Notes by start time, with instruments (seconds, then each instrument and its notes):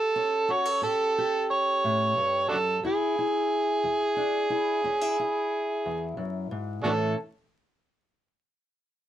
Already playing: steel-string acoustic guitar A2 G4 A4, harmonica A4
0.16 steel-string acoustic guitar C#4
0.48 steel-string acoustic guitar F#4, harmonica C#5
0.65 steel-string acoustic guitar A4
0.82 steel-string acoustic guitar A2 G4, harmonica A4
1.18 steel-string acoustic guitar G4
1.51 harmonica C#5
1.84 steel-string acoustic guitar A2
2.17 steel-string acoustic guitar G2
2.48 steel-string acoustic guitar F#2, harmonica D4 F#4 A4
2.83 steel-string acoustic guitar E2 E4, harmonica G#4
3.19 steel-string acoustic guitar E4
3.84 steel-string acoustic guitar E2
4.16 steel-string acoustic guitar D4
4.50 steel-string acoustic guitar E4
4.84 steel-string acoustic guitar E2 C#4
5.01 steel-string acoustic guitar E4
5.20 steel-string acoustic guitar E4
5.86 steel-string acoustic guitar E2
6.17 steel-string acoustic guitar F#2
6.51 steel-string acoustic guitar G#2
6.83 steel-string acoustic guitar A2 E3 C#4 E4 A4, harmonica D4 F#4 A4